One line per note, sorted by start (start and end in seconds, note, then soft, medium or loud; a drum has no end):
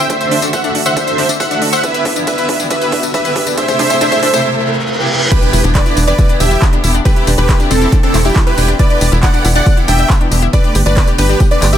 0.00 riser medium
0.09 0.17 D3 medium
0.09 0.17 A3 medium
0.09 0.16 D4 medium
0.09 0.17 F#4 medium
0.09 0.17 A4 medium
0.09 0.39 C5 medium
0.09 0.39 E5 loud
0.09 kick loud
0.09 closed hi-hat medium
0.09 tambourine medium
0.20 0.36 D3 medium
0.20 0.36 A3 medium
0.20 0.36 F#4 medium
0.20 0.36 A4 medium
0.20 0.27 C5 medium
0.20 closed hi-hat medium
0.20 tambourine soft
0.31 0.35 D4 loud
0.31 open hi-hat loud
0.42 0.50 D3 medium
0.42 0.50 A3 medium
0.42 0.48 D4 medium
0.42 0.50 F#4 medium
0.42 0.50 A4 medium
0.42 closed hi-hat medium
0.42 tambourine medium
0.53 0.61 D3 medium
0.53 0.61 A3 medium
0.53 0.61 F#4 medium
0.53 0.61 A4 medium
0.53 0.59 C5 loud
0.53 0.75 E5 medium
0.53 0.75 F#5 medium
0.53 kick loud
0.53 closed hi-hat medium
0.53 tambourine medium
0.64 0.79 D3 medium
0.64 0.79 A3 medium
0.64 0.68 D4 loud
0.64 0.79 F#4 medium
0.64 0.79 A4 medium
0.64 closed hi-hat medium
0.64 tambourine soft
0.75 0.81 D4 medium
0.75 open hi-hat loud
0.85 0.93 D3 medium
0.85 0.93 A3 medium
0.85 0.93 F#4 medium
0.85 0.93 A4 medium
0.85 0.92 C5 loud
0.85 0.95 E5 medium
0.85 0.95 F#5 medium
0.85 closed hi-hat medium
0.85 tambourine medium
0.96 1.04 D3 medium
0.96 1.04 A3 medium
0.96 1.03 D4 medium
0.96 1.04 F#4 medium
0.96 1.04 A4 medium
0.96 1.26 C5 medium
0.96 1.26 E5 loud
0.96 kick loud
0.96 closed hi-hat medium
0.96 tambourine medium
1.07 1.23 D3 medium
1.07 1.23 A3 medium
1.07 1.23 F#4 medium
1.07 1.23 A4 medium
1.07 1.14 C5 medium
1.07 closed hi-hat medium
1.07 tambourine soft
1.18 1.22 D4 loud
1.18 open hi-hat loud
1.29 1.35 D4 medium
1.29 closed hi-hat medium
1.29 tambourine medium
1.40 1.46 C5 loud
1.40 1.62 E5 medium
1.40 1.62 F#5 medium
1.40 kick loud
1.40 tambourine medium
1.51 1.58 D3 medium
1.51 1.59 A3 medium
1.51 1.55 D4 loud
1.51 1.58 F#4 medium
1.51 1.59 A4 medium
1.51 closed hi-hat medium
1.51 tambourine soft
1.62 1.77 D3 medium
1.62 1.77 A3 medium
1.62 1.68 D4 medium
1.62 1.77 F#4 medium
1.62 1.77 A4 medium
1.62 open hi-hat loud
1.73 1.79 C5 loud
1.73 1.82 E5 medium
1.73 1.82 F#5 medium
1.73 closed hi-hat medium
1.73 tambourine medium
1.83 1.91 D3 medium
1.83 1.91 B3 medium
1.83 1.90 D4 medium
1.83 1.91 E4 medium
1.83 1.91 G4 medium
1.83 2.13 B4 medium
1.83 2.13 E5 loud
1.83 kick loud
1.83 closed hi-hat medium
1.83 tambourine medium
1.94 2.10 D3 medium
1.94 2.10 B3 medium
1.94 2.10 E4 medium
1.94 2.10 G4 medium
1.94 2.01 B4 loud
1.94 closed hi-hat medium
1.94 tambourine soft
2.05 2.09 D4 loud
2.05 kick loud
2.05 open hi-hat loud
2.16 2.24 D3 medium
2.16 2.24 B3 medium
2.16 2.22 D4 medium
2.16 2.24 E4 medium
2.16 2.24 G4 medium
2.16 closed hi-hat medium
2.16 tambourine medium
2.27 2.35 D3 medium
2.27 2.35 B3 medium
2.27 2.33 D4 medium
2.27 2.35 E4 medium
2.27 2.35 G4 medium
2.27 2.57 B4 medium
2.27 2.57 E5 loud
2.27 kick loud
2.27 closed hi-hat medium
2.27 tambourine medium
2.38 2.53 D3 medium
2.38 2.53 B3 medium
2.38 2.53 E4 medium
2.38 2.53 G4 medium
2.38 2.44 B4 loud
2.38 closed hi-hat medium
2.38 tambourine soft
2.49 2.53 D4 loud
2.49 kick loud
2.49 open hi-hat loud
2.60 2.67 D3 medium
2.60 2.67 B3 medium
2.60 2.66 D4 medium
2.60 2.67 E4 medium
2.60 2.67 G4 medium
2.60 closed hi-hat medium
2.60 tambourine medium
2.70 2.78 D3 medium
2.70 2.78 B3 medium
2.70 2.77 D4 medium
2.70 2.78 E4 medium
2.70 2.78 G4 medium
2.70 3.00 B4 medium
2.70 3.00 E5 loud
2.70 kick loud
2.70 closed hi-hat medium
2.70 tambourine medium
2.81 2.97 D3 medium
2.81 2.97 B3 medium
2.81 2.97 E4 medium
2.81 2.97 G4 medium
2.81 2.88 B4 loud
2.81 closed hi-hat medium
2.81 tambourine soft
2.92 2.96 D4 loud
2.92 kick loud
2.92 open hi-hat loud
3.03 3.09 D4 medium
3.03 closed hi-hat medium
3.03 tambourine medium
3.14 3.20 D4 medium
3.14 3.44 B4 medium
3.14 3.44 E5 loud
3.14 kick loud
3.14 tambourine medium
3.25 3.33 D3 medium
3.25 3.33 B3 medium
3.25 3.33 E4 medium
3.25 3.33 G4 medium
3.25 3.31 B4 loud
3.25 closed hi-hat medium
3.25 tambourine soft
3.36 3.51 D3 medium
3.36 3.51 B3 medium
3.36 3.40 D4 loud
3.36 3.51 E4 medium
3.36 3.51 G4 medium
3.36 kick loud
3.36 open hi-hat loud
3.47 3.53 D4 medium
3.47 closed hi-hat medium
3.47 tambourine medium
3.58 3.65 C3 medium
3.58 3.65 A3 medium
3.58 3.64 D4 medium
3.58 3.65 E4 medium
3.58 3.65 G4 medium
3.58 3.78 C5 medium
3.58 3.78 E5 loud
3.58 kick loud
3.58 closed hi-hat medium
3.58 tambourine medium
3.68 3.84 C3 medium
3.68 3.84 A3 medium
3.68 3.84 E4 medium
3.68 3.84 G4 medium
3.68 3.75 C5 loud
3.68 kick medium
3.68 closed hi-hat medium
3.68 tambourine soft
3.79 3.85 D4 medium
3.79 3.99 C5 medium
3.79 3.99 E5 loud
3.79 kick loud
3.79 open hi-hat loud
3.90 3.98 C3 medium
3.90 3.98 A3 medium
3.90 3.98 E4 medium
3.90 3.98 G4 medium
3.90 3.96 C5 loud
3.90 kick medium
3.90 closed hi-hat medium
3.90 tambourine medium
4.01 4.09 C3 medium
4.01 4.09 A3 medium
4.01 4.07 D4 medium
4.01 4.09 E4 medium
4.01 4.09 G4 medium
4.01 4.21 C5 medium
4.01 4.21 E5 loud
4.01 kick loud
4.01 closed hi-hat medium
4.01 tambourine medium
4.12 4.27 C3 medium
4.12 4.27 A3 medium
4.12 4.27 E4 medium
4.12 4.27 G4 medium
4.12 4.18 C5 loud
4.12 kick medium
4.12 closed hi-hat medium
4.12 tambourine soft
4.23 4.29 D4 medium
4.23 4.43 C5 medium
4.23 4.43 E5 loud
4.23 kick loud
4.23 open hi-hat loud
4.34 4.41 C3 medium
4.34 4.41 A3 medium
4.34 4.41 E4 medium
4.34 4.41 G4 medium
4.34 4.40 C5 loud
4.34 kick loud
4.34 closed hi-hat medium
4.34 tambourine medium
4.44 4.52 C3 medium
4.44 4.52 A3 medium
4.44 4.52 E4 medium
4.44 4.52 G4 medium
4.44 reverse cymbal medium
4.56 4.71 C3 medium
4.56 4.71 A3 medium
4.56 4.71 E4 medium
4.56 4.71 G4 medium
4.99 5.07 C3 medium
4.99 5.07 A3 medium
4.99 5.07 E4 medium
4.99 5.07 G4 medium
5.10 5.25 C3 medium
5.10 5.25 A3 medium
5.10 5.25 E4 medium
5.10 5.25 G4 medium
5.31 5.39 D3 medium
5.31 5.39 B3 medium
5.31 5.41 D4 medium
5.31 5.39 E4 medium
5.31 5.39 G4 medium
5.31 5.61 G4 medium
5.31 5.61 B4 loud
5.31 kick loud
5.31 closed hi-hat medium
5.31 tambourine soft
5.31 crash loud
5.31 impact medium
5.42 5.58 D3 medium
5.42 5.58 B3 medium
5.42 5.48 D4 medium
5.42 5.58 E4 medium
5.42 5.58 G4 medium
5.42 closed hi-hat medium
5.53 5.62 E1 loud
5.53 5.59 E4 medium
5.53 open hi-hat loud
5.53 tambourine medium
5.64 5.81 E1 loud
5.64 5.72 D3 medium
5.64 5.72 B3 medium
5.64 5.73 D4 medium
5.64 5.72 E4 medium
5.64 5.72 G4 medium
5.64 closed hi-hat medium
5.64 tambourine soft
5.75 5.83 D3 medium
5.75 5.82 B3 medium
5.75 5.81 D4 medium
5.75 5.83 E4 medium
5.75 5.83 G4 medium
5.75 5.97 B4 medium
5.75 5.97 D5 loud
5.75 kick loud
5.75 clap loud
5.75 closed hi-hat medium
5.75 tambourine soft
5.86 6.01 D3 medium
5.86 6.01 B3 medium
5.86 5.92 E4 medium
5.86 6.01 E4 medium
5.86 6.01 G4 medium
5.86 closed hi-hat medium
5.86 tambourine soft
5.97 6.14 E1 loud
5.97 6.06 D4 medium
5.97 open hi-hat loud
5.97 tambourine medium
6.07 6.15 D3 medium
6.07 6.15 B3 medium
6.07 6.14 D4 medium
6.07 6.15 E4 medium
6.07 6.15 G4 medium
6.07 6.30 B4 medium
6.07 6.30 D5 medium
6.07 closed hi-hat medium
6.07 tambourine soft
6.18 6.26 D3 medium
6.18 6.26 B3 medium
6.18 6.24 E4 medium
6.18 6.26 E4 medium
6.18 6.26 G4 medium
6.18 kick loud
6.18 closed hi-hat medium
6.18 tambourine soft
6.29 6.45 D3 medium
6.29 6.45 B3 medium
6.29 6.38 D4 medium
6.29 6.45 E4 medium
6.29 6.45 G4 medium
6.29 closed hi-hat medium
6.40 6.57 E1 loud
6.40 6.46 D4 medium
6.40 6.62 G4 medium
6.40 6.62 E5 medium
6.40 open hi-hat loud
6.40 tambourine medium
6.51 6.57 E4 medium
6.51 closed hi-hat medium
6.51 tambourine soft
6.62 6.71 D4 medium
6.62 kick loud
6.62 clap loud
6.62 tambourine soft
6.73 6.80 D3 medium
6.73 6.80 B3 medium
6.73 6.79 D4 medium
6.73 6.80 E4 medium
6.73 6.80 G4 medium
6.73 closed hi-hat medium
6.83 7.01 E1 medium
6.83 6.99 D3 medium
6.83 6.99 B3 medium
6.83 6.99 E4 medium
6.83 6.90 E4 medium
6.83 6.99 G4 medium
6.83 open hi-hat loud
6.83 tambourine medium
6.94 7.04 D4 medium
6.94 tambourine soft
7.05 7.13 D3 medium
7.05 7.13 C4 medium
7.05 7.11 D4 medium
7.05 7.13 E4 medium
7.05 7.13 G4 medium
7.05 7.28 G4 medium
7.05 7.28 B4 loud
7.05 kick loud
7.05 closed hi-hat medium
7.05 tambourine soft
7.16 7.32 D3 medium
7.16 7.32 C4 medium
7.16 7.22 E4 medium
7.16 7.32 E4 medium
7.16 7.32 G4 medium
7.16 closed hi-hat medium
7.27 7.36 E1 loud
7.27 7.36 D4 medium
7.27 open hi-hat loud
7.27 tambourine medium
7.38 7.55 E1 loud
7.38 7.46 D3 medium
7.38 7.46 C4 medium
7.38 7.44 D4 medium
7.38 7.46 E4 medium
7.38 7.46 G4 medium
7.38 7.60 G4 medium
7.38 7.60 B4 loud
7.38 tambourine soft
7.49 7.56 D3 medium
7.49 7.56 C4 medium
7.49 7.56 E4 medium
7.49 7.55 E4 medium
7.49 7.56 G4 medium
7.49 kick loud
7.49 clap loud
7.49 closed hi-hat medium
7.49 tambourine soft
7.60 7.75 D3 medium
7.60 7.75 C4 medium
7.60 7.69 D4 medium
7.60 7.75 E4 medium
7.60 7.75 G4 medium
7.60 closed hi-hat medium
7.60 tambourine soft
7.71 7.88 E1 loud
7.71 7.93 C4 medium
7.71 7.77 D4 medium
7.71 7.93 A4 loud
7.71 open hi-hat loud
7.71 tambourine medium
7.81 7.89 D3 medium
7.81 7.89 C4 medium
7.81 7.88 E4 medium
7.81 7.89 E4 medium
7.81 7.89 G4 medium
7.81 closed hi-hat medium
7.81 tambourine soft
7.92 8.00 D3 medium
7.92 8.00 C4 medium
7.92 8.01 D4 medium
7.92 8.00 E4 medium
7.92 8.00 G4 medium
7.92 kick loud
7.92 closed hi-hat medium
7.92 tambourine soft
8.03 8.18 D3 medium
8.03 8.18 C4 medium
8.03 8.09 D4 medium
8.03 8.18 E4 medium
8.03 8.18 G4 medium
8.03 8.18 A4 medium
8.03 closed hi-hat medium
8.14 8.31 E1 loud
8.14 8.20 E4 medium
8.14 clap medium
8.14 open hi-hat loud
8.14 tambourine medium
8.25 8.34 D4 medium
8.25 8.40 E4 medium
8.25 8.40 G4 medium
8.25 closed hi-hat medium
8.25 tambourine soft
8.36 8.42 D4 medium
8.36 kick loud
8.36 clap loud
8.36 tambourine soft
8.47 8.54 D3 medium
8.47 8.54 C4 medium
8.47 8.53 E4 medium
8.47 8.54 E4 medium
8.47 8.69 G4 medium
8.47 8.54 G4 medium
8.47 8.69 B4 loud
8.47 closed hi-hat medium
8.57 8.75 E1 medium
8.57 8.73 D3 medium
8.57 8.73 C4 medium
8.57 8.67 D4 medium
8.57 8.73 E4 medium
8.57 8.73 G4 medium
8.57 open hi-hat loud
8.57 tambourine medium
8.68 8.74 D4 medium
8.68 closed hi-hat medium
8.68 tambourine soft
8.79 8.87 D3 medium
8.79 8.87 B3 medium
8.79 8.87 E4 medium
8.79 8.85 E4 medium
8.79 8.87 G4 medium
8.79 9.09 B4 medium
8.79 9.09 D5 loud
8.79 kick loud
8.79 closed hi-hat medium
8.79 tambourine soft
8.90 9.05 D3 medium
8.90 9.05 B3 medium
8.90 8.99 D4 medium
8.90 9.05 E4 medium
8.90 9.05 G4 medium
8.90 closed hi-hat medium
9.01 9.10 E1 loud
9.01 9.07 D4 medium
9.01 open hi-hat loud
9.01 tambourine medium
9.12 9.29 E1 loud
9.12 9.19 D3 medium
9.12 9.19 B3 medium
9.12 9.20 E4 medium
9.12 9.18 E4 medium
9.12 9.19 G4 medium
9.12 closed hi-hat medium
9.12 tambourine soft
9.23 9.30 D3 medium
9.23 9.30 B3 medium
9.23 9.32 D4 medium
9.23 9.30 E4 medium
9.23 9.30 G4 medium
9.23 9.45 D5 medium
9.23 9.45 F#5 loud
9.23 kick loud
9.23 clap loud
9.23 closed hi-hat medium
9.23 tambourine soft
9.34 9.49 D3 medium
9.34 9.49 B3 medium
9.34 9.40 D4 medium
9.34 9.49 E4 medium
9.34 9.49 G4 medium
9.34 closed hi-hat medium
9.34 tambourine soft
9.45 9.62 E1 loud
9.45 9.51 E4 medium
9.45 open hi-hat loud
9.45 tambourine medium
9.55 9.63 D3 medium
9.55 9.63 B3 medium
9.55 9.65 D4 medium
9.55 9.63 E4 medium
9.55 9.63 G4 medium
9.55 9.78 D5 medium
9.55 9.78 F#5 loud
9.55 closed hi-hat medium
9.55 tambourine soft
9.66 9.74 D3 medium
9.66 9.74 B3 medium
9.66 9.72 D4 medium
9.66 9.74 E4 medium
9.66 9.74 G4 medium
9.66 kick loud
9.66 closed hi-hat medium
9.66 tambourine soft
9.77 9.92 D3 medium
9.77 9.92 B3 medium
9.77 9.92 E4 medium
9.77 9.83 E4 medium
9.77 9.92 G4 medium
9.77 closed hi-hat medium
9.88 10.05 E1 loud
9.88 9.97 D4 medium
9.88 10.10 E5 medium
9.88 10.10 G5 loud
9.88 10.10 G5 medium
9.88 open hi-hat loud
9.88 tambourine medium
9.99 10.05 D4 medium
9.99 closed hi-hat medium
9.99 tambourine soft
10.10 10.16 E4 medium
10.10 kick loud
10.10 clap loud
10.10 tambourine soft
10.20 10.28 D3 medium
10.20 10.28 B3 medium
10.20 10.30 D4 medium
10.20 10.28 E4 medium
10.20 10.28 G4 medium
10.20 closed hi-hat medium
10.31 10.49 E1 medium
10.31 10.47 D3 medium
10.31 10.47 B3 medium
10.31 10.38 D4 medium
10.31 10.47 E4 medium
10.31 10.47 G4 medium
10.31 open hi-hat loud
10.31 tambourine medium
10.42 10.48 E4 medium
10.42 closed hi-hat medium
10.42 tambourine soft
10.53 10.61 D3 medium
10.53 10.61 A3 medium
10.53 10.61 B3 medium
10.53 10.62 D4 medium
10.53 10.61 G4 medium
10.53 10.76 B4 medium
10.53 10.76 D5 loud
10.53 10.76 D5 medium
10.53 kick loud
10.53 closed hi-hat medium
10.53 tambourine soft
10.64 10.79 D3 medium
10.64 10.79 A3 medium
10.64 10.79 B3 medium
10.64 10.70 D4 medium
10.64 10.79 G4 medium
10.64 closed hi-hat medium
10.75 10.84 G1 loud
10.75 10.81 G4 medium
10.75 open hi-hat loud
10.75 tambourine medium
10.86 11.03 G1 loud
10.86 10.93 D3 medium
10.86 10.93 A3 medium
10.86 10.93 B3 medium
10.86 10.95 D4 medium
10.86 10.93 G4 medium
10.86 11.08 B4 medium
10.86 11.08 D5 medium
10.86 11.08 D5 loud
10.86 closed hi-hat medium
10.86 tambourine soft
10.97 11.04 D3 medium
10.97 11.04 A3 medium
10.97 11.04 B3 medium
10.97 11.03 D4 medium
10.97 11.04 G4 medium
10.97 kick loud
10.97 clap loud
10.97 closed hi-hat medium
10.97 tambourine soft
11.07 11.23 D3 medium
11.07 11.23 A3 medium
11.07 11.23 B3 medium
11.07 11.23 G4 medium
11.07 11.14 G4 medium
11.07 closed hi-hat medium
11.07 tambourine soft
11.18 11.36 G1 loud
11.18 11.28 D4 medium
11.18 11.41 G4 medium
11.18 11.41 B4 loud
11.18 11.41 B4 medium
11.18 open hi-hat loud
11.18 tambourine medium
11.29 11.37 D3 medium
11.29 11.37 A3 medium
11.29 11.37 B3 medium
11.29 11.35 D4 medium
11.29 11.37 G4 medium
11.29 tambourine soft
11.40 11.48 D3 medium
11.40 11.48 A3 medium
11.40 11.48 B3 medium
11.40 11.48 G4 medium
11.40 11.46 G4 medium
11.40 kick loud
11.40 closed hi-hat medium
11.40 tambourine soft
11.51 11.66 D3 medium
11.51 11.66 A3 medium
11.51 11.66 B3 medium
11.51 11.60 D4 medium
11.51 11.66 G4 medium
11.51 11.66 B4 medium
11.51 11.66 D5 medium
11.51 closed hi-hat medium
11.62 11.78 G1 loud
11.62 11.66 G4 medium
11.62 clap medium
11.62 open hi-hat loud
11.62 tambourine medium
11.73 11.78 G4 medium
11.73 11.78 D5 medium
11.73 11.78 E5 medium
11.73 closed hi-hat medium
11.73 tambourine soft